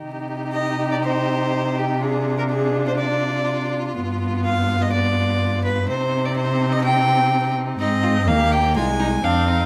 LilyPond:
<<
  \new Staff \with { instrumentName = "Violin" } { \time 4/4 \key c \minor \tempo 4 = 124 r4 ees''8. d''16 c''4. g'8 | aes'8. bes'16 aes'8. c''16 d''4. r8 | r4 f''8. ees''16 d''4. b'8 | c''8. d''16 c''8. ees''16 g''4. r8 |
\key f \dorian ees''4 f''8 g''8 aes''4 f''4 | }
  \new Staff \with { instrumentName = "Violin" } { \time 4/4 \key c \minor g'1 | f'1~ | f'1 | ees'1 |
\key f \dorian ees'8 f'8 g'4 f'8 ees'8 d'8 ees'8 | }
  \new Staff \with { instrumentName = "Viola" } { \time 4/4 \key c \minor ees'1 | d'1 | b1 | c'1 |
\key f \dorian c'4 bes4 aes4 c'4 | }
  \new Staff \with { instrumentName = "Cello" } { \clef bass \time 4/4 \key c \minor c1~ | c1 | g,1 | c1 |
\key f \dorian aes,4 ees,4 c,4 f,4 | }
>>